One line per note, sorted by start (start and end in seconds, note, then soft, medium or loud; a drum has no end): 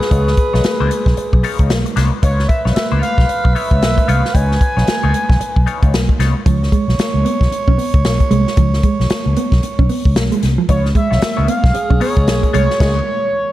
0.00 1.93 G#4 medium
0.00 1.96 B4 loud
0.00 muted clean electric guitar stroke soft
0.00 snare soft
0.11 0.33 C#2 loud
0.11 0.30 B3 medium
0.11 0.31 D#4 medium
0.11 0.31 F4 loud
0.11 0.31 C#5 loud
0.11 kick loud
0.11 closed hi-hat loud
0.27 snare soft
0.37 muted clean electric guitar stroke soft
0.37 kick loud
0.37 closed hi-hat medium
0.53 0.63 B1 loud
0.53 0.64 B3 soft
0.53 0.64 D#4 medium
0.53 0.64 F4 medium
0.53 0.64 C#5 medium
0.53 snare soft
0.64 muted clean electric guitar stroke soft
0.64 snare loud
0.64 closed hi-hat loud
0.80 0.89 C#2 medium
0.80 0.89 B3 medium
0.80 0.90 D#4 medium
0.80 0.90 F4 medium
0.80 0.90 C#5 medium
0.90 muted clean electric guitar stroke soft
0.90 closed hi-hat medium
1.06 1.15 B1 medium
1.06 muted clean electric guitar stroke soft
1.06 kick loud
1.06 snare soft
1.17 muted clean electric guitar stroke soft
1.17 closed hi-hat medium
1.33 1.42 B1 medium
1.33 muted clean electric guitar stroke soft
1.33 kick loud
1.43 1.59 B3 medium
1.43 1.59 D#4 medium
1.43 1.59 F4 medium
1.43 1.58 C#5 medium
1.43 open hi-hat medium
1.59 1.70 C#2 medium
1.59 1.71 B3 medium
1.59 1.71 D#4 medium
1.59 1.71 F4 medium
1.59 1.70 C#5 medium
1.59 kick medium
1.59 closed hi-hat medium
1.70 1.83 B1 loud
1.70 snare loud
1.70 closed hi-hat medium
1.86 muted clean electric guitar stroke soft
1.86 closed hi-hat medium
1.96 2.10 C2 loud
1.96 2.18 B3 medium
1.96 2.12 D#4 medium
1.96 2.12 F4 loud
1.96 2.11 C#5 loud
1.96 snare soft
1.96 closed hi-hat medium
2.12 muted clean electric guitar stroke soft
2.22 2.45 C#2 loud
2.22 2.42 B3 medium
2.22 2.42 D#4 medium
2.22 2.42 F4 loud
2.22 6.15 B4 medium
2.22 2.43 C#5 loud
2.22 2.48 C#5 loud
2.22 kick loud
2.22 closed hi-hat loud
2.39 snare soft
2.49 2.61 E5 medium
2.49 muted clean electric guitar stroke medium
2.49 kick loud
2.49 closed hi-hat medium
2.65 2.74 B1 loud
2.65 2.75 B3 soft
2.65 2.75 D#4 soft
2.65 2.75 F4 medium
2.65 2.76 C#5 medium
2.65 snare soft
2.75 2.87 E5 medium
2.75 muted clean electric guitar stroke soft
2.75 snare loud
2.75 closed hi-hat medium
2.92 3.01 C#2 medium
2.92 3.01 B3 medium
2.92 3.01 D#4 medium
2.92 3.02 F4 medium
2.92 3.02 C#5 medium
3.01 3.55 F5 loud
3.01 closed hi-hat medium
3.18 3.27 B1 medium
3.18 muted clean electric guitar stroke medium
3.18 kick medium
3.18 snare soft
3.29 muted clean electric guitar stroke soft
3.29 closed hi-hat medium
3.44 3.54 B1 loud
3.44 muted clean electric guitar stroke soft
3.44 kick medium
3.53 3.71 B3 medium
3.53 3.70 D#4 medium
3.53 3.70 F4 medium
3.53 3.70 C#5 medium
3.53 4.08 E5 loud
3.53 open hi-hat medium
3.71 3.82 C#2 medium
3.71 3.83 B3 medium
3.71 3.83 D#4 medium
3.71 3.82 F4 medium
3.71 3.82 C#5 medium
3.71 kick loud
3.71 closed hi-hat medium
3.82 3.95 B1 loud
3.82 snare loud
3.82 closed hi-hat medium
3.98 muted clean electric guitar stroke medium
3.98 kick loud
3.98 closed hi-hat medium
4.06 4.21 C2 loud
4.06 4.27 B3 medium
4.06 4.23 D#4 medium
4.06 4.23 F4 medium
4.06 4.23 C#5 medium
4.06 4.35 F5 loud
4.06 closed hi-hat medium
4.24 muted clean electric guitar stroke medium
4.24 snare soft
4.33 4.57 C#2 loud
4.33 4.54 B3 medium
4.33 4.54 D#4 medium
4.33 4.54 F4 medium
4.33 4.54 C#5 medium
4.33 6.19 G#5 loud
4.33 kick loud
4.33 closed hi-hat loud
4.52 snare soft
4.61 muted clean electric guitar stroke soft
4.61 kick loud
4.61 closed hi-hat medium
4.77 4.86 B1 medium
4.77 4.87 B3 medium
4.77 4.87 D#4 medium
4.77 4.87 F4 soft
4.77 4.88 C#5 medium
4.77 snare soft
4.87 muted clean electric guitar stroke soft
4.87 snare loud
4.87 closed hi-hat medium
5.03 5.12 C#2 medium
5.03 5.13 B3 medium
5.03 5.13 D#4 medium
5.03 5.14 F4 medium
5.03 5.14 C#5 medium
5.14 muted clean electric guitar stroke soft
5.14 closed hi-hat medium
5.29 5.39 B1 medium
5.29 muted clean electric guitar stroke medium
5.29 kick loud
5.29 snare soft
5.40 muted clean electric guitar stroke soft
5.40 closed hi-hat medium
5.56 5.65 B1 medium
5.56 muted clean electric guitar stroke soft
5.56 kick medium
5.66 5.82 B3 medium
5.66 5.82 D#4 medium
5.66 5.82 F4 medium
5.66 5.81 C#5 medium
5.66 closed hi-hat medium
5.82 5.93 C#2 medium
5.82 5.92 B3 medium
5.82 5.93 D#4 medium
5.82 5.93 F4 medium
5.82 5.93 C#5 medium
5.82 kick loud
5.82 closed hi-hat soft
5.93 6.06 B1 loud
5.93 muted clean electric guitar stroke soft
5.93 snare loud
5.93 closed hi-hat loud
6.09 kick loud
6.19 6.33 C2 loud
6.19 6.36 B3 medium
6.19 6.35 D#4 medium
6.19 6.35 F4 medium
6.19 6.35 C#5 medium
6.19 snare soft
6.19 closed hi-hat medium
6.36 muted clean electric guitar stroke medium
6.46 6.68 C#2 loud
6.46 6.58 F3 medium
6.46 10.38 C#5 loud
6.46 kick loud
6.46 closed hi-hat loud
6.63 snare soft
6.72 6.85 G#3 medium
6.72 kick loud
6.72 closed hi-hat medium
6.88 6.97 B1 loud
6.88 muted clean electric guitar stroke soft
6.88 snare soft
6.99 snare loud
6.99 closed hi-hat loud
7.14 7.23 C#2 medium
7.25 7.38 B3 medium
7.25 closed hi-hat medium
7.41 7.50 B1 medium
7.41 kick medium
7.41 snare soft
7.51 muted fingered electric bass stroke soft
7.51 muted clean electric guitar stroke soft
7.51 closed hi-hat medium
7.68 7.77 B1 loud
7.68 7.76 C#4 medium
7.68 kick medium
7.78 7.90 B3 medium
7.78 open hi-hat medium
7.94 8.04 C#2 medium
7.94 kick loud
7.94 closed hi-hat medium
8.04 8.17 B1 medium
8.04 snare loud
8.04 closed hi-hat loud
8.20 kick loud
8.20 closed hi-hat medium
8.31 8.44 C2 loud
8.31 8.43 G#3 medium
8.31 closed hi-hat medium
8.47 snare soft
8.57 8.80 C#2 loud
8.57 8.70 F3 medium
8.57 kick loud
8.57 closed hi-hat loud
8.73 snare soft
8.83 8.96 G#3 medium
8.83 kick medium
8.83 closed hi-hat medium
9.00 9.08 B1 loud
9.00 muted clean electric guitar stroke soft
9.00 snare soft
9.10 muted fingered electric bass stroke soft
9.10 snare loud
9.10 closed hi-hat loud
9.26 9.35 C#2 medium
9.36 9.49 B3 medium
9.36 closed hi-hat medium
9.52 9.61 B1 medium
9.52 kick medium
9.52 snare soft
9.63 muted clean electric guitar stroke soft
9.63 closed hi-hat medium
9.79 9.88 B1 medium
9.79 9.87 C#4 medium
9.79 kick medium
9.89 10.02 B3 medium
9.89 open hi-hat medium
10.05 10.16 C#2 medium
10.05 kick loud
10.16 10.29 B1 medium
10.16 snare loud
10.16 closed hi-hat medium
10.32 10.40 G#3 medium
10.32 closed hi-hat medium
10.42 10.56 C2 medium
10.42 muted clean electric guitar stroke soft
10.42 snare soft
10.42 closed hi-hat medium
10.58 10.66 F3 medium
10.69 10.91 C#2 loud
10.69 10.81 F3 medium
10.69 10.88 B3 medium
10.69 10.88 D#4 medium
10.69 10.89 F4 medium
10.69 10.89 C#5 loud
10.69 10.82 C#5 loud
10.69 kick loud
10.69 closed hi-hat loud
10.85 snare soft
10.95 11.07 G#3 medium
10.95 11.50 E5 loud
10.95 muted clean electric guitar stroke soft
10.95 kick loud
10.95 closed hi-hat medium
11.11 11.20 B1 loud
11.11 11.21 B3 medium
11.11 11.21 D#4 medium
11.11 11.21 F4 medium
11.11 11.21 C#5 medium
11.11 muted clean electric guitar stroke medium
11.11 snare soft
11.22 muted clean electric guitar stroke soft
11.22 snare loud
11.22 closed hi-hat medium
11.37 11.47 C#2 medium
11.37 11.47 B3 medium
11.37 11.47 D#4 medium
11.37 11.47 F4 medium
11.37 11.47 C#5 medium
11.48 11.60 B3 medium
11.48 12.01 F5 loud
11.48 closed hi-hat medium
11.64 11.73 B1 loud
11.64 muted clean electric guitar stroke medium
11.64 kick medium
11.64 snare soft
11.74 12.78 G#4 loud
11.74 muted clean electric guitar stroke soft
11.74 muted fingered electric bass stroke medium
11.74 closed hi-hat medium
11.90 11.99 B1 medium
11.90 11.98 C#4 medium
11.90 muted clean electric guitar stroke soft
11.90 kick medium
12.00 12.16 B3 medium
12.00 12.13 B3 medium
12.00 12.16 D#4 medium
12.00 12.15 F4 medium
12.00 12.50 C#5 loud
12.00 12.15 C#5 medium
12.00 open hi-hat medium
12.16 12.28 C#2 loud
12.16 12.28 B3 medium
12.16 12.28 D#4 medium
12.16 12.28 F4 medium
12.16 12.28 C#5 medium
12.16 kick loud
12.16 closed hi-hat medium
12.28 12.41 B1 medium
12.28 snare loud
12.28 closed hi-hat medium
12.43 muted clean electric guitar stroke soft
12.43 kick medium
12.43 closed hi-hat soft
12.53 12.67 C2 loud
12.53 12.66 G#3 medium
12.53 12.73 B3 medium
12.53 12.69 D#4 medium
12.53 12.69 F4 medium
12.53 13.52 C#5 loud
12.53 12.69 C#5 loud
12.53 closed hi-hat medium
12.70 muted clean electric guitar stroke soft
12.70 snare soft
12.80 12.99 C#2 loud
12.80 12.99 B3 loud
12.80 12.99 D#4 loud
12.80 12.99 F4 loud
12.80 12.94 G#4 medium
12.80 12.99 C#5 loud
12.80 kick loud
12.80 snare loud
12.80 crash medium